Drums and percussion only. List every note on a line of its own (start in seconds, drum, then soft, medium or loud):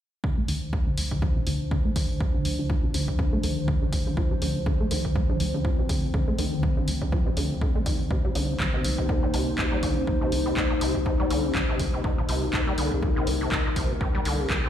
0.24 kick loud
0.48 open hi-hat loud
0.73 kick loud
0.98 open hi-hat loud
1.11 kick medium
1.22 kick loud
1.47 open hi-hat medium
1.71 kick loud
1.96 kick medium
1.96 open hi-hat medium
2.21 kick loud
2.45 open hi-hat loud
2.70 kick loud
2.94 open hi-hat loud
3.08 kick medium
3.19 kick loud
3.43 open hi-hat loud
3.68 kick loud
3.93 kick medium
3.93 open hi-hat loud
4.17 kick loud
4.42 open hi-hat loud
4.66 kick loud
4.91 open hi-hat loud
5.05 kick medium
5.15 kick loud
5.40 open hi-hat loud
5.65 kick loud
5.89 kick medium
5.89 open hi-hat loud
6.14 kick loud
6.39 open hi-hat loud
6.63 kick loud
6.88 open hi-hat loud
7.02 kick medium
7.12 kick loud
7.37 open hi-hat loud
7.61 kick loud
7.86 kick medium
7.86 open hi-hat loud
8.11 kick loud
8.35 open hi-hat loud
8.60 kick loud
8.60 clap loud
8.84 open hi-hat loud
8.98 kick medium
9.09 kick loud
9.34 open hi-hat loud
9.58 kick loud
9.58 clap loud
9.83 kick medium
9.83 open hi-hat medium
10.07 kick loud
10.32 open hi-hat medium
10.57 kick loud
10.57 clap loud
10.81 open hi-hat medium
10.95 kick medium
11.06 kick loud
11.30 open hi-hat medium
11.55 kick loud
11.55 clap loud
11.79 kick medium
11.79 open hi-hat medium
12.04 kick loud
12.29 open hi-hat loud
12.53 kick loud
12.53 clap loud
12.78 open hi-hat medium
12.92 kick medium
13.02 kick loud
13.27 open hi-hat loud
13.52 kick loud
13.52 clap loud
13.76 kick medium
13.76 open hi-hat loud
14.01 kick loud
14.25 open hi-hat loud
14.50 kick loud
14.50 clap loud